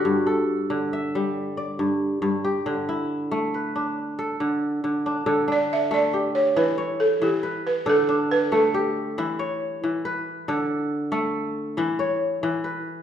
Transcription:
<<
  \new Staff \with { instrumentName = "Balafon" } { \time 12/8 \key d \major \tempo 4. = 92 r1. | r1. | r8 d''8 e''8 d''4 cis''8 b'4 a'8 g'4 b'8 | a'4 b'8 a'2 r2 r8 |
r1. | }
  \new Staff \with { instrumentName = "Kora" } { \time 12/8 \key d \major fis'16 r16 a'4. e''4. d''4. r8 g'8~ | g'8 e'4. b'4. a'4. r8 d'8 | a'8 d'4 a'8 g'4 e'8 cis''4. b'4 | a'8 d'4 a'8 g'4 e'8 cis''4. b'4 |
a'4. a'4. e'8 cis''4. b'4 | }
  \new Staff \with { instrumentName = "Kora" } { \clef bass \time 12/8 \key d \major g,4 r8 d4 g4 r8 g,4 g,4 | d4 r8 a4 d'4 r8 d4 d4 | d4 r8 a4 r8 e4 r8 e4 r8 | d4 r8 a4 r8 e4 r8 e4 r8 |
d4 r8 a4 r8 e4 r8 e4 r8 | }
>>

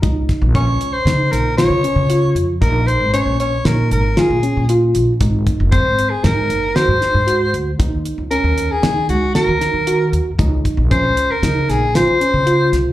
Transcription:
<<
  \new Staff \with { instrumentName = "Soprano saxophone" } { \time 5/4 \key des \major \tempo 4 = 116 r4 des''8. c''8. bes'8 des''4. r8 | bes'8 c''8 des''8 des''8 bes'8 bes'8 aes'4 r4 | r4 c''8. aes'16 bes'4 c''4. r8 | r4 bes'8. aes'8. ges'8 bes'4. r8 |
r4 c''8. bes'8. aes'8 c''4. r8 | }
  \new Staff \with { instrumentName = "Tine electric piano" } { \time 5/4 \key des \major ees'4 des'4 ees'4 f'8 des'8 f'4 | ees'4 des'4 ees'4 f'8 des'8 f'4 | ees'4 c'4 ees'4 ges'8 ees'8 ges'4 | ees'4 des'4 ees'4 ges'8 ees'8 ges'4 |
ees'4 des'4 ees'4 f'8 des'8 f'4 | }
  \new Staff \with { instrumentName = "Upright bass" } { \clef bass \time 5/4 \key des \major des,8 r16 bes,,8 des,8 r16 des8 bes,,8 r16 des16 r16 des8. f,8 | bes,,8 r16 aes,,8 bes,,8 r16 bes,8 aes,,8 r16 bes,16 r16 bes,8. bes,,8 | aes,,8 r16 ges,,8 aes,,8 r16 aes,8 ges,,8 r16 aes,16 r16 aes,8. d,8 | ees,8 r16 des,8 ees,8 r16 ees8 des,8 r16 ees16 r16 ees8. ees,8 |
des,8 r16 bes,,8 des,8 r16 des8 bes,,8 r16 des16 r16 des8. c,8 | }
  \new DrumStaff \with { instrumentName = "Drums" } \drummode { \time 5/4 <hh bd>8 <hh bd sn>8 <hh bd>8 hh8 <hh sn>8 <hh sn>8 <hh sn>8 hh8 hh8 hh8 | <hh bd>8 hh8 hh8 hh8 <hh sn>8 hh8 <hh sn>8 hh8 hh8 hh8 | <hh bd>8 <hh bd>8 <hh bd>8 hh8 <hh sn>8 hh8 <hh sn>8 <hh sn>8 hh8 hh8 | <hh bd>8 hh8 hh8 hh8 <hh sn>8 hh8 <hh sn>8 <hh sn>8 hh8 hh8 |
<hh bd>8 <hh bd>8 <hh bd>8 hh8 <hh sn>8 <hh sn>8 <hh sn>8 hh8 hh8 <hh sn>8 | }
>>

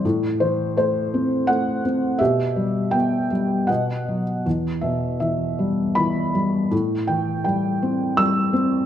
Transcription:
<<
  \new Staff \with { instrumentName = "Felt piano" } { \time 3/4 \key e \minor \tempo 4 = 82 << { r8 c''8 c''4 fis''4 | e''4 g''4 fis''8. r16 | r8 e''8 e''4 b''4 | r8 g''8 g''4 e'''4 | } \\ { r2. | g'4. r8 dis''4 | r2. | r2. | } >> }
  \new Staff \with { instrumentName = "Felt piano" } { \clef bass \time 3/4 \key e \minor a,8 e8 a8 c'8 a8 c'8 | b,8 g8 b8 g8 b,8 fis8 | e,8 b,8 e8 g8 e8 g8 | a,8 e8 g8 c'8 g8 c'8 | }
>>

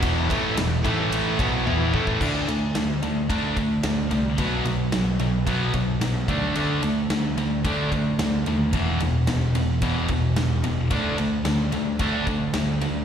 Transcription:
<<
  \new Staff \with { instrumentName = "Tonewheel organ" } { \time 4/4 \key d \mixolydian \tempo 4 = 110 << { <b' g''>4. <a' a''>4 <b' g''>4. | r1 | r1 | r1 |
r1 | r1 | } \\ { e'1 | r1 | r1 | r1 |
r1 | r1 | } >> }
  \new Staff \with { instrumentName = "Distorted electric guitar" } { \clef bass \time 4/4 \key d \mixolydian <e, b, e>8 <a, e a>8 <e, b,>8 <a, e a>4 <b, fis b>8 <e b e'>8 <a, e a>8 | r1 | r1 | r1 |
r1 | r1 | }
  \new Staff \with { instrumentName = "Distorted electric guitar" } { \clef bass \time 4/4 \key d \mixolydian <e, b, e>8 <a, e a>8 <e, b,>8 <a, e a>4 <b, fis b>8 <e b e'>8 <a, e a>8 | <d a d'>8 <d a>8 <d a>8 <d a>8 <d a d'>8 <d a>8 <d a>8 <d a>8 | <b, fis b>8 <b, fis>8 <b, fis>8 <b, fis>8 <b, fis b>8 <b, fis>8 <b, fis>8 <d a d'>8 | <d a d'>8 <d a>8 <d a>8 <d a>8 <d a d'>8 <d a>8 <d a>8 <d a>8 |
<e, b, e>8 <e, b,>8 <e, b,>8 <e, b,>8 <e, b, e>8 <e, b,>8 <e, b,>8 <e, b,>8 | <d a d'>8 <d a>8 <d a>8 <d a>8 <d a d'>8 <d a>8 <d a>8 <d a>8 | }
  \new Staff \with { instrumentName = "Distorted electric guitar" } { \clef bass \time 4/4 \key d \mixolydian <e, b, e>8 <a, e a>8 <e, b,>8 <a, e a>4 <b, fis b>8 <e b e'>8 <a, e a>8 | <d a d'>8 <d a>8 <d a>8 <d a>8 <d a d'>8 <d a>8 <d a>8 <d a>8 | <b, fis b>8 <b, fis>8 <b, fis>8 <b, fis>8 <b, fis b>8 <b, fis>8 <b, fis>8 <d a d'>8 | <d a d'>8 <d a>8 <d a>8 <d a>8 <d a d'>8 <d a>8 <d a>8 <d a>8 |
<e, b, e>8 <e, b,>8 <e, b,>8 <e, b,>8 <e, b, e>8 <e, b,>8 <e, b,>8 <e, b,>8 | <d a d'>8 <d a>8 <d a>8 <d a>8 <d a d'>8 <d a>8 <d a>8 <d a>8 | }
  \new Staff \with { instrumentName = "Picked electric bass" } { \clef bass \time 4/4 \key d \mixolydian e,,8 a,,8 e,,8 a,,4 b,,8 e,8 a,,8 | d,8 d,8 d,8 d,8 d,4 d,8 c,8 | b,,8 b,,8 b,,8 b,,8 b,,8 b,,8 b,,8 d,8 | d,8 d,8 d,8 d,8 d,4 d,8 dis,8 |
e,,8 e,,8 e,,8 e,,8 e,,8 e,,8 e,,8 e,,8 | d,8 d,8 d,8 d,8 d,4 d,8 d,8 | }
  \new DrumStaff \with { instrumentName = "Drums" } \drummode { \time 4/4 <bd cymr>8 <bd cymr>8 <cymr sn>8 <bd cymr>8 cymr8 <bd cymr>8 tommh8 bd16 bd16 | <cymc bd>8 cymr8 <cymr sn>8 cymr8 <bd cymr>8 <bd cymr>8 <cymr sn>8 cymr8 | <bd cymr>8 cymr8 <cymr sn>8 cymr8 <bd cymr>8 <bd cymr>8 <cymr sn>8 <bd cymr>8 | cymr8 cymr8 <cymr sn>8 cymr8 <bd cymr>8 <bd cymr>8 <cymr sn>8 cymr8 |
<bd cymr>8 cymr8 <cymr sn>8 cymr8 <bd cymr>8 <bd cymr>8 <cymr sn>8 cymr8 | <bd cymr>8 cymr8 <cymr sn>8 cymr8 <bd cymr>8 <bd cymr>8 <cymr sn>8 cymr8 | }
>>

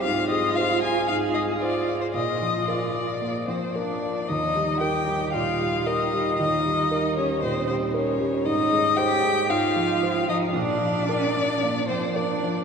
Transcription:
<<
  \new Staff \with { instrumentName = "Violin" } { \time 4/4 \key ees \major \tempo 4 = 114 f''8 ees''8 f''8 aes''8 f''8 ees''8 d''8. c''16 | ees''4 d''4. c''8 d''4 | ees''4 g''4 f''4 ees''4 | ees''4. des''8 c''8 c''8 des''4 |
ees''4 g''4 f''4. ees''8 | d''2~ d''8 c''8 d''4 | }
  \new Staff \with { instrumentName = "Cello" } { \time 4/4 \key ees \major f'2 aes'4 f'4 | f'2~ f'8 c'8 d'4 | ees'4 g'4 f'4 ees'4 | ees'4. des'8 c'8 c'8 des'4 |
ees'4 g'4 f'4. ees'8 | d'2~ d'8 c'8 d'4 | }
  \new Staff \with { instrumentName = "Grand piano" } { \clef bass \time 4/4 \key ees \major aes,8 aes8 c''8 f'8 aes,8 aes8 c''8 f'8 | bes,8 f8 bes'8 f'8 bes8 f8 bes'8 f'8 | ees,8 g8 bes'8 g8 bes,8 g8 bes'8 g8 | ees,8 g8 bes'8 g8 bes,8 g8 bes'8 g8 |
aes,8 aes8 c''8 aes8 aes,8 f8 c''8 f8 | bes,8 f8 bes'8 f8 bes8 f8 bes'8 f8 | }
>>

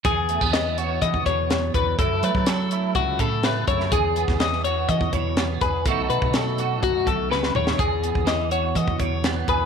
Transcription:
<<
  \new Staff \with { instrumentName = "Clean electric guitar" } { \time 4/4 \key e \major \tempo 4 = 124 gis'4 dis''8 cis''8 dis''8 cis''4 b'8 | a'8 b'8 a'4 fis'8 a'8 b'8 cis''8 | gis'4 dis''8 cis''8 dis''8 cis''4 b'8 | a'8 b'8 a'4 fis'8 a'8 b'8 cis''8 |
gis'4 dis''8 cis''8 dis''8 cis''4 b'8 | }
  \new Staff \with { instrumentName = "Clean electric guitar" } { \time 4/4 \key e \major << { gis'8 a16 b8. fis'2~ fis'8 | e'8 a4 e'4. a8 e'8 | gis'8 b4 fis'4. b8 gis'8 | <fis a dis' fis'>8 a4 fis'2~ fis'8 |
gis'8 b4 fis'4. b8 gis'8 | } \\ { e,4 e4. b,4 e,8 | fis,4 fis4. cis4. | e,4 e4. b,4. | b,4 fis4. fis,8 cis8 dis8 |
e,4 e4. b,4. | } >> }
  \new Staff \with { instrumentName = "Fingered electric bass" } { \clef bass \time 4/4 \key e \major e,8. e,4~ e,16 e16 e,16 e,4 e,8 | fis,8 fis16 fis4~ fis16 cis,8 a,4 fis,8 | e,8. e,4~ e,16 e16 e,16 e,4 e,8 | b,,8 b,16 b,4~ b,16 fis,8 b,,8 cis,8 dis,8 |
e,8. e,4~ e,16 e16 e,16 e,4 e,8 | }
  \new DrumStaff \with { instrumentName = "Drums" } \drummode { \time 4/4 <hh bd>8 hh16 bd16 <hh sn>8 hh8 <hh bd>16 bd16 <hh bd>8 <hh sn>8 <hh bd>8 | <hh bd>8 hh16 bd16 <hh sn>8 hh8 <hh bd>8 <hh bd>8 <hh sn>8 <hh bd>16 sn16 | <hh bd>8 hh16 <bd sn>16 <hh sn>16 sn16 hh8 <hh bd>16 bd16 <hh bd>8 <hh sn>8 <hh bd>8 | <hh bd>8 hh16 bd16 <hh sn>8 hh8 <hh bd>8 <hh bd>8 sn16 sn16 toml16 sn16 |
<hh bd>8 hh16 bd16 <hh sn>8 hh8 <hh bd>16 bd16 <hh bd>8 <hh sn>8 <hh bd>8 | }
>>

